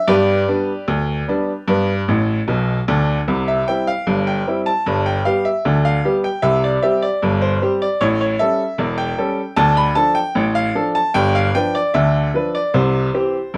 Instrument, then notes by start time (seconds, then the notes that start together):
upright piano
0.08 G2 B3 G4 B4 D5
0.48 G3 B3 D4
0.88 D2
1.28 G3 B3 D4
1.68 G2 B3
2.08 A1 A2
2.48 B1 B2
2.88 D2 D3
3.28 C2 C3
3.48 E5
3.68 G3 C4 E4 G5
3.87 F5
4.07 G1 G2
4.27 G5
4.47 G3 C4 E4
4.66 A5
4.86 G1 G2
5.06 G5
5.25 G3 B3 G4 F5
5.45 E5
5.65 D2 D3
5.85 F5
6.05 G3 B3 G4
6.24 G5
6.42 C2 C3 E5
6.64 D5
6.82 G3 C4 G4 E5
7.02 D5
7.22 G1 G2
7.41 C5
7.62 G3 C4 G4
7.82 D5
8.01 A1 A2 C#5
8.21 C#5
8.39 G3 C#4 A4 E5
8.78 E1 E2
8.98 G5
9.18 G3 C#4 A4
9.57 D2 D3 A5
9.77 B5
9.95 F3 D4 A4 A5
10.15 G5
10.35 A1 A2
10.55 F5
10.75 F3 D4 A4
10.95 A5
11.14 G1 G2 G5
11.35 F5
11.55 F3 D4 B4 G5
11.75 D5
11.94 D2 D3 E5
12.34 F3 D4 B4
12.55 D5
12.74 C2 C3 C5
13.14 E3 C4 G4
13.54 G1 G2